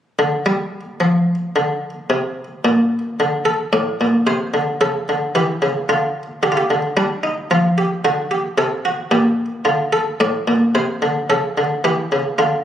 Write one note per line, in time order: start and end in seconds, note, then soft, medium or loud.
0.19 0.46 D3 medium
0.46 0.80 G3 medium
1.00 1.34 F3 medium
1.56 1.90 D3 medium
2.10 2.44 C3 medium
2.65 2.98 A#2 medium
3.20 3.53 D3 medium
3.45 3.72 A4 medium
3.73 3.99 A2 medium
3.73 4.06 D5 medium
4.01 4.27 A#2 medium
4.27 4.53 C3 medium
4.27 4.60 C5 medium
4.54 4.80 D3 medium
4.81 5.07 C#3 medium
4.81 5.15 A4 medium
5.09 5.35 D3 medium
5.35 5.61 E3 medium
5.35 5.69 G4 medium
5.62 5.88 C#3 medium
5.89 6.23 D3 medium
5.89 6.23 F4 medium
6.43 6.69 D3 medium
6.43 6.47 G4 medium
6.52 6.58 F4 medium
6.57 6.82 G4 medium
6.70 6.96 D3 medium
6.97 7.30 G3 medium
6.97 7.23 D4 medium
7.23 7.50 D#4 medium
7.51 7.84 F3 medium
7.51 7.77 F4 medium
7.78 8.04 G4 medium
8.05 8.38 D3 medium
8.05 8.31 F#4 medium
8.31 8.57 G4 medium
8.58 8.91 C3 medium
8.58 8.84 A4 medium
8.85 9.11 F#4 medium
9.11 9.45 A#2 medium
9.11 9.45 G4 medium
9.65 9.99 D3 medium
9.65 9.92 F4 medium
9.93 10.20 A4 medium
10.20 10.47 A2 medium
10.20 10.55 D5 medium
10.48 10.74 A#2 medium
10.75 11.02 C3 medium
10.75 11.09 C5 medium
11.02 11.29 D3 medium
11.30 11.56 C#3 medium
11.30 11.64 A4 medium
11.58 11.84 D3 medium
11.84 12.11 E3 medium
11.84 12.19 G4 medium
12.12 12.39 C#3 medium
12.38 12.64 D3 medium
12.38 12.64 F4 medium